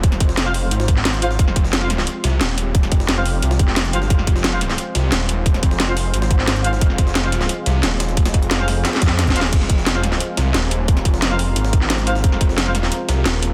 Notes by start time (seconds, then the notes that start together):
Already playing: D#1 G#3 C4 F4 C5
0.03 kick, closed hi-hat
0.12 snare, closed hi-hat
0.20 F1, kick, closed hi-hat
0.29 snare
0.37 snare, closed hi-hat
0.46 F4 C5 F5, snare
0.54 closed hi-hat, open hi-hat
0.71 G#1, closed hi-hat
0.80 snare
0.88 kick, closed hi-hat
0.97 snare
1.05 snare, closed hi-hat
1.14 closed hi-hat
1.22 F4 C5 F5, closed hi-hat
1.31 snare
1.39 F1 G4, kick, closed hi-hat
1.48 snare
1.56 F1, kick, closed hi-hat
1.65 snare
1.73 snare, closed hi-hat
1.81 F4 C5 F5, snare
1.90 snare, closed hi-hat
1.98 snare
2.07 closed hi-hat
2.24 C2, snare, closed hi-hat
2.41 D#1, snare, closed hi-hat
2.58 closed hi-hat
2.75 kick, closed hi-hat
2.83 snare, closed hi-hat
2.92 F1, kick, closed hi-hat
3.00 snare
3.09 snare, closed hi-hat
3.17 F4 C5 F5, snare
3.26 closed hi-hat, open hi-hat
3.42 C2, closed hi-hat
3.51 snare
3.59 F1, kick, closed hi-hat
3.68 snare
3.76 snare, closed hi-hat
3.85 closed hi-hat
3.93 G1 F4 C5 F5, closed hi-hat
4.02 snare
4.10 F1 C5, kick, closed hi-hat
4.19 snare
4.27 F1, kick, closed hi-hat
4.36 snare
4.44 snare, closed hi-hat
4.53 F4 C5 F5, snare
4.61 snare, closed hi-hat
4.70 snare
4.78 closed hi-hat
4.95 C2, snare, closed hi-hat
5.12 D#1, snare, closed hi-hat
5.29 closed hi-hat
5.46 kick, closed hi-hat
5.54 snare, closed hi-hat
5.63 F1, kick, closed hi-hat
5.71 snare
5.80 snare, closed hi-hat
5.88 F4 C5 F5, snare
5.97 closed hi-hat, open hi-hat
6.14 G#1, closed hi-hat
6.22 snare
6.31 kick, closed hi-hat
6.39 snare
6.48 snare, closed hi-hat
6.56 closed hi-hat
6.64 F4 C5 F5, closed hi-hat
6.73 snare
6.81 F1 G#4, kick, closed hi-hat
6.90 snare
6.98 F1, kick, closed hi-hat
7.07 snare
7.15 snare, closed hi-hat
7.24 F4 C5 F5, snare
7.32 snare, closed hi-hat
7.41 snare
7.49 closed hi-hat
7.66 C2, snare, closed hi-hat
7.83 D#1, snare, closed hi-hat
8.00 snare, closed hi-hat
8.09 closed hi-hat
8.17 kick, closed hi-hat
8.26 snare, closed hi-hat
8.34 F1, kick, closed hi-hat
8.42 closed hi-hat
8.51 snare, closed hi-hat
8.59 F4 C5 F5, snare
8.68 snare, closed hi-hat, open hi-hat
8.85 snare, closed hi-hat
8.93 snare
8.96 snare
9.02 F2, kick, snare, closed hi-hat
9.07 snare
9.19 snare, closed hi-hat
9.27 kick, snare, closed hi-hat
9.36 D#1 F4 C5 F5, closed hi-hat
9.41 snare
9.44 snare
9.53 F1 A#4, kick, closed hi-hat, crash
9.61 snare
9.70 F1, kick, closed hi-hat
9.78 snare
9.86 snare, closed hi-hat
9.95 F4 C5 F5, snare
10.03 snare, closed hi-hat
10.12 snare
10.20 closed hi-hat
10.37 C2, snare, closed hi-hat
10.54 D#1, snare, closed hi-hat
10.71 closed hi-hat
10.88 kick, closed hi-hat
10.97 snare, closed hi-hat
11.05 F1, kick, closed hi-hat
11.14 snare
11.22 snare, closed hi-hat
11.31 F4 C5 F5, snare
11.39 closed hi-hat, open hi-hat
11.56 G#1, closed hi-hat
11.65 snare
11.73 kick, closed hi-hat
11.82 snare
11.90 snare, closed hi-hat
11.98 closed hi-hat
12.07 F4 C5 F5, closed hi-hat
12.15 snare
12.24 F1, kick, closed hi-hat
12.32 snare
12.41 F1, kick, closed hi-hat
12.49 snare
12.58 snare, closed hi-hat
12.66 F4 C5 F5, snare
12.75 snare, closed hi-hat
12.83 snare
12.92 closed hi-hat
13.09 C2, snare, closed hi-hat
13.26 D#1, snare, closed hi-hat
13.43 closed hi-hat